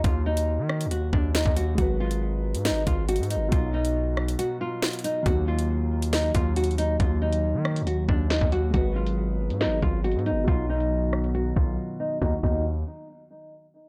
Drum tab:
CC |------------------------------------------------------------------------------------------------|------------------------------------------------------------------------------------------------|------------------------------------------------------------------------------------------------|------------------------------------------------------------------------------------------------|
HH |x-----------------x-----------------------x-----x-----------------------x-----------x-----------|x-----------------x-----------------------x-----x-----------x-----------x---x---x---x-----------|x-----------------x-----------------------x-----x-----------------------x--x--x--x--x-----------|x-----------------x-----------------------x-----x-----------x-----------x---x---x---x-----------|
SD |------------------------------------r-----------------------------------o-----------------------|------------------------------------------------o-----------------------------------------------|------------------------------------r-----------------------------------o-----------------------|------------------------------------------------o-----------------------------------------------|
BD |o-----------------------------------------------------------o-----------------o-----------------|o-----------------------------------------------------------o-----------------------------------|o-----------------------------------------------------------------------------------------------|o-----------------------------------------------------------o-----------------------------------|

CC |------------------------------------------------------------------------------------------------|------------------------------------------------------------------------------------------------|------------------------------------------------------------------------------------------------|------------x-----------------------------------------------------------------------------------|
HH |x-----------------x-----------------------x-----x-----------------------x-----------x-----------|x-----------------x-----------------------x-----x-----------x-----------x---x---x---x-----------|x-----------------x-----------------------x-----x-----------------------------------------------|------------------------------------------------------------------------------------------------|
SD |------------------------------------r-----------------------------------o-----------------------|------------------------------------------------o-----------------------------------------------|------------------------------------r-----------------------------------------------------------|o-----------------------------------------------------------------------------------------------|
BD |o-----------------------------------------------------------o-----------------o-----------------|o-----------------------------------------------------------o-----------------------------------|o-----------------------------------------------------------o-----------------------------------|o-----------o-----------------------------------------------------------------------------------|